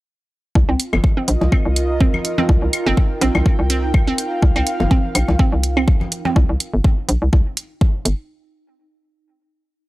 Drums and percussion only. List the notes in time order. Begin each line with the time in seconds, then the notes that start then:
0.55 kick
0.80 closed hi-hat
0.93 high conga, claves
1.04 kick
1.28 closed hi-hat
1.41 high conga
1.52 kick, claves
1.76 closed hi-hat
2.01 kick
2.14 high conga, claves
2.25 closed hi-hat
2.38 high conga
2.49 kick
2.73 closed hi-hat, claves
2.97 kick
3.21 closed hi-hat
3.35 high conga, claves
3.46 kick
3.70 closed hi-hat
3.94 kick, claves
4.18 closed hi-hat
4.42 kick
4.56 claves
4.67 closed hi-hat
4.80 high conga
4.91 kick
5.15 closed hi-hat, claves
5.28 high conga
5.39 kick
5.63 closed hi-hat
5.77 claves
5.88 kick
6.01 high conga
6.12 closed hi-hat
6.25 high conga
6.36 kick
6.60 closed hi-hat
6.84 kick
7.09 closed hi-hat
7.33 kick
7.57 closed hi-hat
7.81 kick
8.05 closed hi-hat